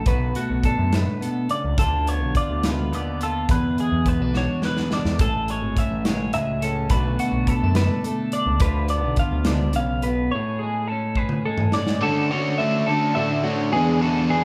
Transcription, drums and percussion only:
0.06 kick loud
0.06 closed hi-hat medium
0.35 closed hi-hat medium
0.64 kick medium
0.64 closed hi-hat medium
0.93 snare loud
0.93 closed hi-hat medium
1.22 closed hi-hat medium
1.49 closed hi-hat medium
1.78 kick loud
1.78 closed hi-hat medium
2.07 closed hi-hat medium
2.35 kick medium
2.35 closed hi-hat medium
2.63 snare loud
2.63 closed hi-hat medium
2.93 closed hi-hat medium
3.21 closed hi-hat medium
3.49 kick loud
3.49 closed hi-hat medium
3.78 closed hi-hat medium
4.06 kick medium
4.06 closed hi-hat medium
4.34 snare medium
4.62 snare medium
4.77 snare medium
4.91 snare medium
5.05 snare medium
5.19 kick loud
5.19 closed hi-hat medium
5.48 closed hi-hat medium
5.77 kick medium
5.77 closed hi-hat medium
6.05 snare loud
6.05 closed hi-hat medium
6.33 closed hi-hat medium
6.62 closed hi-hat medium
6.90 kick loud
6.90 closed hi-hat medium
7.19 closed hi-hat medium
7.47 kick medium
7.47 closed hi-hat medium
7.75 snare loud
7.75 closed hi-hat medium
8.04 closed hi-hat medium
8.32 closed hi-hat medium
8.60 kick loud
8.60 closed hi-hat medium
8.88 closed hi-hat medium
9.16 kick medium
9.16 closed hi-hat medium
9.45 snare loud
9.45 closed hi-hat medium
9.73 closed hi-hat medium
10.02 closed hi-hat medium
11.16 kick medium
11.29 high tom medium
11.58 mid tom medium
11.72 snare medium
11.87 snare medium

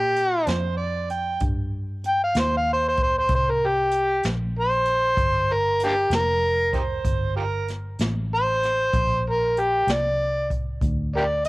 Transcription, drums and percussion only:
0.16 closed hi-hat medium
0.46 snare medium
0.46 closed hi-hat medium
1.10 closed hi-hat soft
1.40 kick medium
1.40 closed hi-hat medium
2.04 closed hi-hat medium
2.35 snare loud
2.35 closed hi-hat medium
2.97 kick medium
2.97 closed hi-hat soft
3.29 kick medium
3.29 closed hi-hat medium
3.91 closed hi-hat medium
4.23 snare medium
4.23 closed hi-hat medium
4.85 closed hi-hat medium
5.17 kick medium
5.17 closed hi-hat medium
5.80 closed hi-hat medium
6.11 snare medium
6.11 closed hi-hat medium
6.73 kick medium
6.73 closed hi-hat soft
7.05 kick medium
7.05 closed hi-hat medium
7.68 snare soft
7.68 closed hi-hat medium
7.99 snare medium
7.99 closed hi-hat medium
8.63 snare soft
8.63 closed hi-hat soft
8.93 kick medium
8.93 closed hi-hat medium
9.57 closed hi-hat medium
9.88 snare loud
9.88 closed hi-hat medium
10.50 kick medium
10.50 closed hi-hat medium
10.81 kick medium
10.81 closed hi-hat medium
11.44 closed hi-hat medium

